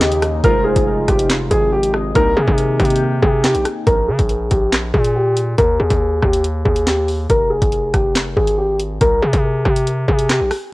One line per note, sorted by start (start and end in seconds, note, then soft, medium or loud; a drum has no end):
0.00 0.41 D#2 loud
0.00 0.42 C#3 medium
0.00 0.42 D#3 medium
0.00 0.40 A#3 medium
0.00 0.41 A#3 medium
0.00 0.40 C#4 medium
0.00 0.41 D#4 medium
0.00 2.12 D#4 medium
0.00 0.19 G4 medium
0.00 0.40 D#5 medium
0.00 snare loud
0.00 clap medium
0.12 closed hi-hat medium
0.22 cross-stick loud
0.22 closed hi-hat medium
0.43 0.75 F1 loud
0.43 3.83 C3 medium
0.43 2.14 F3 medium
0.43 2.11 G#3 medium
0.43 2.14 G#3 medium
0.43 2.12 D#4 medium
0.43 2.12 F4 medium
0.43 0.62 A#4 loud
0.43 0.84 C5 loud
0.43 kick loud
0.43 closed hi-hat medium
0.64 1.05 G#4 medium
0.76 1.07 F1 loud
0.76 kick medium
0.76 closed hi-hat medium
1.08 1.49 F1 loud
1.08 1.26 G4 medium
1.08 kick loud
1.08 cross-stick medium
1.08 closed hi-hat medium
1.19 closed hi-hat medium
1.30 snare loud
1.30 clap medium
1.51 2.13 G#1 loud
1.51 1.69 G#4 medium
1.51 kick loud
1.51 closed hi-hat medium
1.72 1.91 G4 medium
1.83 closed hi-hat medium
1.94 2.14 D#5 medium
1.94 cross-stick loud
2.14 2.36 C2 loud
2.14 3.85 D#3 medium
2.14 3.83 A#3 medium
2.14 3.85 A#3 medium
2.14 3.83 C4 medium
2.14 3.85 D#4 medium
2.14 3.84 D#4 medium
2.14 2.34 A#4 loud
2.14 kick loud
2.14 closed hi-hat medium
2.37 2.47 C3 loud
2.37 2.77 G#4 medium
2.47 2.78 C3 loud
2.47 kick loud
2.58 closed hi-hat medium
2.79 3.21 C3 loud
2.79 2.98 G4 medium
2.79 3.83 G5 loud
2.79 kick medium
2.79 cross-stick medium
2.79 closed hi-hat medium
2.85 closed hi-hat medium
2.90 closed hi-hat medium
2.96 closed hi-hat medium
3.22 3.56 C3 loud
3.22 3.41 G#4 medium
3.22 kick loud
3.44 3.62 G4 medium
3.44 snare loud
3.44 clap medium
3.55 3.65 A#1 loud
3.55 closed hi-hat medium
3.65 cross-stick medium
3.65 closed hi-hat medium
3.87 4.10 A#1 loud
3.87 4.05 A#4 loud
3.87 kick loud
3.87 closed hi-hat medium
4.08 4.18 C#3 loud
4.08 4.49 G#4 medium
4.19 4.50 A#1 loud
4.19 kick medium
4.19 closed hi-hat medium
4.29 closed hi-hat medium
4.51 4.92 A#1 loud
4.51 4.69 G4 medium
4.51 kick medium
4.51 closed hi-hat medium
4.73 snare loud
4.73 clap medium
4.94 5.56 A#2 loud
4.94 5.12 G#4 medium
4.94 kick medium
5.04 closed hi-hat medium
5.16 5.34 G4 medium
5.37 closed hi-hat medium
5.58 5.79 D#2 loud
5.58 5.76 A#4 loud
5.58 kick loud
5.58 closed hi-hat medium
5.80 5.90 D#2 loud
5.80 6.20 G#4 medium
5.90 6.21 D#2 loud
5.90 kick medium
5.90 closed hi-hat medium
6.22 6.64 D#2 loud
6.22 6.41 G4 medium
6.22 kick medium
6.22 cross-stick medium
6.33 closed hi-hat medium
6.44 closed hi-hat medium
6.65 7.27 D#2 loud
6.65 6.83 G#4 medium
6.65 kick medium
6.76 closed hi-hat medium
6.87 7.05 G4 medium
6.87 snare loud
6.87 clap medium
7.08 open hi-hat medium
7.30 7.60 F1 loud
7.30 7.48 A#4 loud
7.30 kick loud
7.30 closed hi-hat medium
7.50 7.91 G#4 medium
7.62 7.93 F1 loud
7.62 kick loud
7.62 closed hi-hat medium
7.72 closed hi-hat medium
7.94 8.35 F1 loud
7.94 8.12 G4 medium
7.94 kick loud
7.94 cross-stick medium
7.94 closed hi-hat medium
8.15 snare loud
8.15 clap medium
8.37 8.99 G#1 loud
8.37 8.55 G#4 medium
8.37 kick medium
8.47 closed hi-hat medium
8.58 8.76 G4 medium
8.80 closed hi-hat medium
9.01 9.22 C2 loud
9.01 9.20 A#4 loud
9.01 kick loud
9.01 closed hi-hat medium
9.22 9.33 C3 loud
9.22 9.63 G#4 medium
9.33 9.64 C3 loud
9.33 kick loud
9.33 closed hi-hat medium
9.65 10.06 C3 loud
9.65 9.83 G4 medium
9.65 kick medium
9.65 cross-stick medium
9.76 closed hi-hat medium
9.87 closed hi-hat medium
10.08 10.42 C3 loud
10.08 10.26 G#4 medium
10.08 kick medium
10.19 closed hi-hat medium
10.30 10.48 G4 medium
10.30 snare loud
10.30 clap medium
10.40 10.51 A#1 loud
10.51 cross-stick medium
10.51 open hi-hat medium